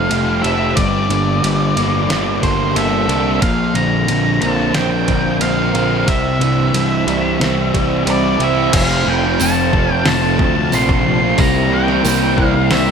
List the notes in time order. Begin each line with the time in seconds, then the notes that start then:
Already playing: F3 G3 A3 C4 A4 F5
0.10 F1 A3 F4 G4, ride
0.42 F1 C4 G4 A4 E5, ride
0.76 G1 G2 G3 D5, kick, ride
1.09 G1 D3 A#3, ride
1.42 G1 G3, ride
1.75 G1 A#3, ride
2.09 G1 D4, snare, ride
2.41 G1 G3 A#3 A4 C5, kick, ride
2.74 G1 A#3 D4 A4 E5, ride
3.08 C2 D4 A4, ride
3.41 A#1 A#2 F3 F5, kick, ride
3.74 A#1 D3 C4 A#5, ride
4.07 A#1 D3 F3, ride
4.40 A#1 A#3 C4 A5, ride
4.74 A#1 C4 D4 G5, snare, ride
5.06 A#1 D3 A#3 A#4, kick, ride
5.39 A#1 A#3 D4 F4 F5, ride
5.73 A#1 C4 F4 A#4, ride
6.05 C2 C3 G3 E5, kick, ride
6.40 C2 E3 C4, ride
6.73 C2 E3 G3, ride
7.06 C2 G3 C4, ride
7.39 C2 C4 E4, snare, ride
7.73 C2 E3 G3 G4, kick, ride
8.06 C2 G3 E4, ride
8.11 D5
8.39 C2 C4 E4 G4, ride
8.43 E5
8.73 F1 F2 C3 F3 A3 C4 F4 F5 A5, kick, open hi-hat, crash
8.77 F5
9.06 F1 F2 C3 F3 G5
9.23 F3 A3 C4 F4
9.40 F1 F2 C3 F3 A3 C4 F4 A5, open hi-hat, tambourine
9.72 F1 F2 C3 F3 A3 C4 A4, kick
9.76 F4
9.89 C3 F3 G5, muted overdriven electric guitar stroke
10.05 F1 A5, snare, open hi-hat
10.22 C3 F3 A3 C4 F4
10.38 D2 F2 C3 F3 A3 C4 F4, kick
10.55 C3 F3, muted overdriven electric guitar stroke
10.71 A#1 F2 C3 F3 A3 C4 F4 C6, open hi-hat, tambourine
10.88 F3 A3 C4 F4, kick
11.05 F2 C3 F3
11.21 C3 F3 A3 C4 F4
11.37 C2 C3 G3 A#3 C4 E4 G4 C5 A#5, kick, open hi-hat
11.70 C3 G3 C4
11.74 G5
11.87 A#3 E4 G4, snare
12.03 C2 C3 G3 A#3 C4 E4 G4, open hi-hat, tambourine
12.35 C2 C3 G3 A#3 C4 E4 G4, kick
12.45 F5
12.53 G3 C4, muted overdriven electric guitar stroke
12.70 C2 E4 E5, snare, open hi-hat
12.86 C4 G4